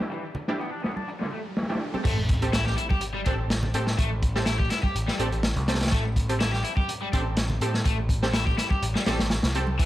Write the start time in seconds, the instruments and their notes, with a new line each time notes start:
Already playing: riser
0.00 snare
0.11 overdriven electric guitar E3, closed hi-hat
0.35 closed hi-hat, low conga
0.48 synth stab D4 E4 G4, snare
0.60 overdriven electric guitar B3, closed hi-hat
0.72 overdriven electric guitar D4
0.84 overdriven electric guitar B3, snare, closed hi-hat
0.96 overdriven electric guitar D4, high conga
1.08 closed hi-hat
1.20 overdriven electric guitar D3, snare
1.32 overdriven electric guitar A3, closed hi-hat
1.45 closed hi-hat
1.57 snare, closed hi-hat
1.63 snare, closed hi-hat
1.69 synth stab D4 E4 G4, snare, closed hi-hat
1.75 snare, closed hi-hat
1.80 closed hi-hat
1.94 synth stab C4 G4 A4, high conga
2.05 picked electric bass A1, overdriven electric guitar A3, kick, closed hi-hat, crash, sub drop
2.29 kick, closed hi-hat
2.42 synth stab C4 G4 A4, closed hi-hat
2.53 overdriven electric guitar E4, snare, closed hi-hat
2.66 overdriven electric guitar G4, snare
2.77 overdriven electric guitar E4, closed hi-hat
2.90 overdriven electric guitar G4, kick, high conga
3.01 closed hi-hat
3.14 overdriven electric guitar G3
3.26 picked electric bass A1, synth stab C4 G4 A4, overdriven electric guitar D4, kick, closed hi-hat
3.50 snare, closed hi-hat
3.63 low conga
3.74 picked electric bass A2, synth stab C4 G4 A4, closed hi-hat
3.87 snare
3.98 picked electric bass A1, overdriven electric guitar A3, kick, closed hi-hat
4.23 kick, closed hi-hat
4.35 synth stab C4 G4 A4, snare
4.46 overdriven electric guitar E4, snare, closed hi-hat
4.60 overdriven electric guitar G4, kick
4.70 overdriven electric guitar E4, snare, closed hi-hat
4.83 overdriven electric guitar G4, kick, high conga
4.95 picked electric bass A1, closed hi-hat
5.08 overdriven electric guitar G3, snare
5.19 picked electric bass A1, synth stab C4 G4 A4, overdriven electric guitar D4, closed hi-hat
5.32 picked electric bass A1, closed hi-hat
5.43 snare, closed hi-hat
5.56 picked electric bass C2, closed hi-hat, low conga
5.68 synth stab C4 G4 A4, snare, closed hi-hat
5.74 snare, closed hi-hat
5.81 snare, closed hi-hat, high conga
5.86 snare, closed hi-hat
5.92 picked electric bass A1, overdriven electric guitar A3, kick, closed hi-hat
6.16 kick, closed hi-hat
6.29 synth stab C4 G4 A4, closed hi-hat
6.40 overdriven electric guitar E4, snare, closed hi-hat
6.53 overdriven electric guitar G4, snare
6.64 overdriven electric guitar E4, closed hi-hat
6.77 overdriven electric guitar G4, kick, high conga
6.89 closed hi-hat
7.02 overdriven electric guitar G3
7.13 picked electric bass A1, synth stab C4 G4 A4, overdriven electric guitar D4, kick, closed hi-hat
7.37 snare, closed hi-hat
7.50 low conga
7.61 picked electric bass A2, synth stab C4 G4 A4, closed hi-hat
7.74 snare
7.85 picked electric bass A1, overdriven electric guitar A3, kick, closed hi-hat
8.09 kick, closed hi-hat
8.22 synth stab C4 G4 A4, snare
8.34 overdriven electric guitar E4, snare, closed hi-hat
8.46 overdriven electric guitar G4, kick
8.58 overdriven electric guitar E4, snare, closed hi-hat
8.70 overdriven electric guitar G4, kick, high conga
8.82 picked electric bass A1, closed hi-hat
8.95 overdriven electric guitar G3, snare
9.06 picked electric bass A1, overdriven electric guitar G3, synth stab C4 G4 A4, snare, closed hi-hat
9.19 picked electric bass A1, snare, closed hi-hat
9.30 snare, closed hi-hat
9.43 picked electric bass C2, snare, closed hi-hat, low conga
9.55 synth stab C4 G4 A4, closed hi-hat
9.67 high conga
9.79 picked electric bass E1, overdriven electric guitar E3, kick, closed hi-hat